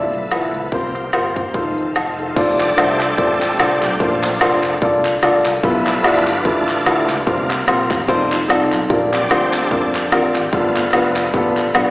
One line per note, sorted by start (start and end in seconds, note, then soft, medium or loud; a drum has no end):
0.00 1.52 F3 medium
0.00 0.71 B3 medium
0.00 0.20 E4 medium
0.00 0.71 E4 soft
0.00 0.20 F4 medium
0.00 0.20 A4 medium
0.00 0.68 A4 medium
0.00 0.20 D5 medium
0.13 0.29 B1 medium
0.13 closed hi-hat medium
0.31 0.51 A1 medium
0.31 0.61 E4 medium
0.31 0.61 F4 medium
0.31 0.61 A4 medium
0.31 0.61 B4 medium
0.31 snare medium
0.31 closed hi-hat medium
0.54 0.70 C#2 medium
0.54 closed hi-hat medium
0.72 1.07 C2 medium
0.72 1.33 C3 medium
0.72 1.54 A#3 medium
0.72 2.35 C4 medium
0.72 1.02 F4 medium
0.72 1.54 G4 medium
0.72 1.02 G4 medium
0.72 1.02 A#4 medium
0.72 1.03 C5 medium
0.72 kick loud
0.72 closed hi-hat medium
0.95 snare soft
0.95 closed hi-hat medium
1.12 1.49 G1 medium
1.12 1.43 F4 medium
1.12 1.43 G4 medium
1.12 1.43 A#4 medium
1.12 1.44 C5 medium
1.12 snare medium
1.12 closed hi-hat medium
1.36 kick medium
1.36 closed hi-hat medium
1.54 1.78 F1 medium
1.54 2.36 D#3 medium
1.54 2.35 A3 medium
1.54 1.84 D#4 medium
1.54 1.84 F4 medium
1.54 2.36 F4 medium
1.54 1.84 A4 medium
1.54 1.85 C5 medium
1.54 kick loud
1.54 closed hi-hat medium
1.78 1.93 A1 medium
1.78 closed hi-hat medium
1.95 2.31 F1 medium
1.95 2.18 D#5 soft
1.95 2.18 A5 medium
1.95 snare medium
1.95 closed hi-hat medium
2.19 2.58 D#4 soft
2.19 2.35 A4 medium
2.19 closed hi-hat medium
2.36 2.71 F1 medium
2.36 3.96 G3 medium
2.36 3.96 A3 medium
2.36 2.66 D4 medium
2.36 3.17 D4 medium
2.36 2.66 F4 medium
2.36 2.66 A4 medium
2.36 2.66 C5 medium
2.36 2.67 D5 medium
2.36 kick loud
2.36 closed hi-hat medium
2.36 crash loud
2.59 2.79 D5 loud
2.59 snare soft
2.59 clap loud
2.59 closed hi-hat medium
2.76 3.12 C2 medium
2.76 3.07 D4 medium
2.76 3.07 F4 medium
2.76 3.07 A4 medium
2.76 3.18 A4 medium
2.76 3.07 C5 medium
2.76 3.20 C5 loud
2.76 3.07 E5 medium
2.76 snare loud
2.76 closed hi-hat medium
3.01 clap medium
3.01 closed hi-hat medium
3.10 snare soft
3.18 3.53 A1 medium
3.18 3.96 C4 medium
3.18 3.48 D4 medium
3.18 3.96 D4 medium
3.18 3.48 F4 medium
3.18 3.48 A4 medium
3.18 3.79 A4 loud
3.18 3.48 C5 medium
3.18 3.48 D5 medium
3.18 kick loud
3.18 closed hi-hat medium
3.42 clap medium
3.42 closed hi-hat medium
3.59 3.79 C2 loud
3.59 3.89 D4 medium
3.59 3.89 F4 medium
3.59 3.89 A4 medium
3.59 3.89 C5 medium
3.59 3.89 D5 medium
3.59 snare loud
3.59 closed hi-hat loud
3.82 3.98 B1 loud
3.82 4.00 G4 medium
3.82 clap loud
3.82 closed hi-hat medium
4.00 4.35 A#1 loud
4.00 4.60 A#2 medium
4.00 4.63 A3 medium
4.00 4.61 C4 medium
4.00 4.30 D4 medium
4.00 4.62 D4 medium
4.00 4.30 F4 medium
4.00 4.61 F4 medium
4.00 4.30 A4 medium
4.00 4.30 A#4 medium
4.00 4.30 C5 medium
4.00 kick loud
4.00 closed hi-hat medium
4.23 snare soft
4.23 clap loud
4.23 closed hi-hat medium
4.40 4.76 F1 loud
4.40 4.71 D4 medium
4.40 4.71 F4 medium
4.40 4.71 A4 medium
4.40 4.71 A#4 medium
4.40 4.71 C5 medium
4.40 snare loud
4.40 closed hi-hat medium
4.63 4.80 A3 medium
4.63 4.80 C4 soft
4.63 4.81 D4 medium
4.63 clap medium
4.63 closed hi-hat medium
4.74 snare soft
4.81 5.17 C2 medium
4.81 5.11 D4 medium
4.81 5.12 F4 medium
4.81 5.12 A4 medium
4.81 5.12 A#4 medium
4.81 5.12 D5 medium
4.81 kick loud
4.81 closed hi-hat medium
5.05 clap loud
5.05 closed hi-hat medium
5.22 5.42 C#2 loud
5.22 5.52 D4 medium
5.22 5.52 F4 medium
5.22 5.52 A4 medium
5.22 5.53 A#4 medium
5.22 5.53 D5 loud
5.22 snare loud
5.22 closed hi-hat loud
5.45 5.61 C2 loud
5.45 clap loud
5.45 closed hi-hat medium
5.63 5.98 B1 loud
5.63 6.24 B2 medium
5.63 6.24 F3 medium
5.63 6.24 A3 medium
5.63 6.24 B3 medium
5.63 5.93 E4 medium
5.63 6.25 E4 medium
5.63 5.93 F4 medium
5.63 5.93 G4 medium
5.63 5.93 A4 medium
5.63 5.93 B4 medium
5.63 kick loud
5.63 closed hi-hat medium
5.86 5.94 D5 loud
5.86 snare soft
5.86 clap loud
5.86 closed hi-hat medium
6.03 6.39 G1 loud
6.03 6.45 D4 medium
6.03 6.34 E4 medium
6.03 6.34 F4 medium
6.03 6.44 F4 medium
6.03 6.34 G4 medium
6.03 6.34 A4 medium
6.03 6.47 B4 loud
6.03 6.34 D5 medium
6.03 snare loud
6.03 closed hi-hat medium
6.27 clap medium
6.27 closed hi-hat medium
6.37 snare soft
6.45 6.80 A1 loud
6.45 7.23 D4 medium
6.45 6.75 E4 medium
6.45 6.75 F4 medium
6.45 7.23 F4 medium
6.45 6.75 G4 medium
6.45 7.11 A4 loud
6.45 6.75 A4 medium
6.45 6.75 B4 medium
6.45 kick loud
6.45 closed hi-hat medium
6.68 clap loud
6.68 closed hi-hat medium
6.86 7.06 D2 loud
6.86 7.16 E4 medium
6.86 7.16 F4 medium
6.86 7.16 G4 medium
6.86 7.16 A4 medium
6.86 7.16 B4 medium
6.86 snare loud
6.86 closed hi-hat medium
7.08 7.24 C#2 loud
7.08 7.18 G4 medium
7.08 clap loud
7.08 closed hi-hat medium
7.26 7.62 C2 loud
7.26 7.87 C3 medium
7.26 7.55 F3 medium
7.26 8.05 A#3 medium
7.26 7.56 C4 medium
7.26 7.56 D4 medium
7.26 7.56 F4 medium
7.26 7.87 F4 medium
7.26 7.56 G4 medium
7.26 7.56 A#4 medium
7.26 7.56 C5 medium
7.26 kick loud
7.26 closed hi-hat medium
7.49 snare soft
7.49 clap loud
7.49 closed hi-hat medium
7.67 7.87 A#1 loud
7.67 7.97 C4 medium
7.67 7.97 F4 medium
7.67 7.97 G4 medium
7.67 7.97 A#4 medium
7.67 7.97 C5 medium
7.67 snare loud
7.67 closed hi-hat medium
7.90 8.06 A1 loud
7.90 kick loud
7.90 clap loud
7.90 closed hi-hat medium
8.00 snare soft
8.08 8.43 F1 loud
8.08 8.37 G3 medium
8.08 8.37 A3 medium
8.08 8.38 C4 medium
8.08 8.38 D#4 medium
8.08 8.37 D#4 medium
8.08 8.38 F4 medium
8.08 8.31 F4 medium
8.08 8.38 A4 medium
8.08 8.38 C5 loud
8.08 8.30 D5 medium
8.08 kick loud
8.08 closed hi-hat medium
8.32 8.49 D#4 medium
8.32 8.49 C5 medium
8.32 clap loud
8.32 closed hi-hat medium
8.48 8.69 C2 medium
8.48 8.78 C4 medium
8.48 8.89 C4 medium
8.48 8.78 D#4 medium
8.48 8.78 F4 medium
8.48 8.78 A4 medium
8.48 8.88 A4 medium
8.48 8.79 D5 medium
8.48 snare loud
8.48 closed hi-hat medium
8.72 8.87 B1 loud
8.72 clap medium
8.72 closed hi-hat medium
8.89 9.25 A#1 loud
8.89 9.49 A#2 medium
8.89 9.19 C4 medium
8.89 9.19 D4 medium
8.89 9.19 F4 medium
8.89 9.19 G4 medium
8.89 9.19 A#4 medium
8.89 kick loud
8.89 closed hi-hat medium
9.12 9.68 G3 medium
9.12 9.53 C4 medium
9.12 9.53 D4 medium
9.12 9.31 D5 loud
9.12 snare soft
9.12 clap loud
9.12 closed hi-hat medium
9.30 9.65 D2 medium
9.30 9.60 C4 medium
9.30 9.60 D4 medium
9.30 9.60 F4 medium
9.30 9.60 G4 medium
9.30 9.54 C5 loud
9.30 9.60 C5 medium
9.30 snare loud
9.30 closed hi-hat medium
9.53 9.94 C4 medium
9.53 9.94 D4 medium
9.53 10.37 A4 loud
9.53 clap loud
9.53 closed hi-hat medium
9.63 snare soft
9.71 10.06 F2 loud
9.71 10.00 C4 medium
9.71 10.01 D4 medium
9.71 10.01 F4 medium
9.71 10.01 G4 medium
9.71 10.01 A#4 medium
9.71 kick loud
9.71 closed hi-hat medium
9.95 10.11 G3 soft
9.95 10.11 C4 soft
9.95 10.11 D4 soft
9.95 clap loud
9.95 closed hi-hat medium
10.12 10.31 A1 loud
10.12 10.41 C4 medium
10.12 10.41 D4 medium
10.12 10.41 F4 medium
10.12 10.42 G4 medium
10.12 10.42 A#4 loud
10.12 snare loud
10.12 closed hi-hat loud
10.34 10.50 G#1 loud
10.34 10.53 G4 medium
10.34 clap loud
10.34 closed hi-hat medium
10.51 10.87 G1 loud
10.51 11.13 G2 medium
10.51 11.55 F3 medium
10.51 11.30 A3 medium
10.51 10.82 B3 medium
10.51 11.56 B3 medium
10.51 10.82 D4 medium
10.51 11.12 F4 medium
10.51 10.82 F4 medium
10.51 10.83 G4 medium
10.51 10.83 A4 medium
10.51 kick loud
10.51 closed hi-hat medium
10.75 snare soft
10.75 clap loud
10.75 closed hi-hat medium
10.92 11.28 F1 medium
10.92 11.23 B3 medium
10.92 11.23 D4 medium
10.92 11.23 F4 medium
10.92 11.23 G4 medium
10.92 11.23 B4 medium
10.92 snare loud
10.92 closed hi-hat medium
11.16 clap loud
11.16 closed hi-hat medium
11.25 snare soft
11.34 11.68 A1 medium
11.34 11.63 B3 loud
11.34 11.63 D4 medium
11.34 11.64 F4 medium
11.34 11.64 G4 medium
11.34 11.64 A4 loud
11.34 kick loud
11.34 closed hi-hat medium
11.57 11.73 F3 soft
11.57 11.73 A3 soft
11.57 11.73 B3 medium
11.57 clap medium
11.57 closed hi-hat medium
11.74 11.90 B1 medium
11.74 11.90 B3 medium
11.74 11.90 D4 medium
11.74 11.90 F4 medium
11.74 11.90 G4 medium
11.74 11.90 B4 medium
11.74 snare loud
11.74 closed hi-hat loud